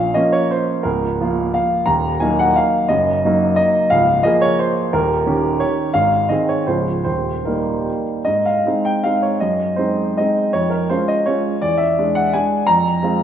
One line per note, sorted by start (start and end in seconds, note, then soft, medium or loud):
0.00 0.13 A#1 soft
0.00 0.13 A#2 soft
0.00 0.13 F5 medium
0.14 0.82 F3 soft
0.14 0.82 A#3 soft
0.14 0.82 C#4 soft
0.14 0.33 D#5 medium
0.32 0.50 C#5 medium
0.51 0.85 C5 medium
0.83 1.18 C#1 soft
0.83 1.18 C#2 soft
0.83 1.36 A#4 medium
1.21 1.84 F3 soft
1.21 1.84 A#3 soft
1.21 1.84 F4 soft
1.54 1.87 F5 medium
1.86 2.20 D#1 soft
1.86 2.20 D#2 medium
1.86 2.20 A#5 medium
2.20 2.85 F#3 soft
2.20 2.85 A#3 soft
2.20 2.86 D#4 soft
2.20 2.38 G#5 medium
2.39 2.56 F#5 medium
2.56 2.89 F5 medium
2.88 3.22 F#1 soft
2.88 3.22 F#2 medium
2.88 3.40 D#5 medium
3.25 3.86 F#3 medium
3.25 3.86 A#3 soft
3.25 3.87 D#4 medium
3.56 3.89 D#5 medium
3.90 4.23 C#1 medium
3.90 4.22 C#2 medium
3.90 4.23 F5 medium
4.23 4.88 F3 medium
4.23 4.88 A#3 medium
4.23 4.89 G#4 medium
4.23 4.41 D#5 medium
4.41 4.58 C#5 medium
4.59 4.92 C5 medium
4.93 5.26 D#1 soft
4.93 5.26 D#2 medium
4.93 5.45 A#4 medium
5.26 5.91 D#3 soft
5.26 5.91 C#4 soft
5.26 5.91 G4 medium
5.60 5.94 C#5 medium
5.94 6.29 G#1 soft
5.94 6.29 G#2 soft
5.94 6.29 F5 medium
6.29 6.64 D#3 soft
6.29 6.65 C4 soft
6.29 6.65 G#4 soft
6.29 6.48 D#5 medium
6.49 6.67 C#5 medium
6.67 7.04 C#1 soft
6.67 7.04 C#2 soft
6.67 7.02 F3 soft
6.67 7.02 C#4 soft
6.67 7.02 G#4 soft
6.67 7.03 C5 medium
7.04 7.44 D#1 soft
7.04 7.45 D#2 soft
7.04 7.45 C5 medium
7.45 8.22 G3 soft
7.45 8.22 A#3 soft
7.45 8.22 D#4 soft
7.45 8.06 A#4 soft
8.25 8.64 G#2 soft
8.25 8.44 D#5 medium
8.46 8.85 F5 medium
8.66 9.00 G#3 soft
8.66 9.01 C4 soft
8.66 9.01 D#4 soft
8.85 9.04 G5 medium
9.04 9.37 G#3 soft
9.04 9.38 C4 soft
9.04 9.38 D#4 soft
9.04 9.22 F5 medium
9.22 9.40 C#5 medium
9.40 9.78 F#2 soft
9.40 9.78 D#5 medium
9.76 10.13 G#3 soft
9.76 10.13 C4 soft
9.76 10.14 D#4 soft
9.76 10.16 C5 medium
10.17 10.50 G#3 soft
10.17 10.51 C4 soft
10.17 10.51 D#4 soft
10.17 10.53 D#5 medium
10.53 10.89 F2 soft
10.53 10.71 C#5 medium
10.70 10.89 A#4 medium
10.90 11.23 G#3 soft
10.90 11.24 C#4 soft
10.90 11.24 F4 soft
10.90 11.08 C5 medium
11.08 11.27 D#5 medium
11.26 11.59 G#3 soft
11.26 11.59 C#4 soft
11.26 11.59 F4 soft
11.26 11.61 C#5 medium
11.62 11.96 E2 soft
11.62 11.79 D5 medium
11.77 12.15 E5 medium
11.99 12.31 G#3 soft
11.99 12.31 D4 soft
12.15 12.33 F#5 medium
12.33 12.65 G#3 soft
12.33 12.65 D4 soft
12.33 12.68 G#5 medium
12.67 13.02 F2 medium
12.67 13.23 A#5 medium
13.03 13.23 G#3 soft
13.03 13.23 C4 soft
13.03 13.23 F4 soft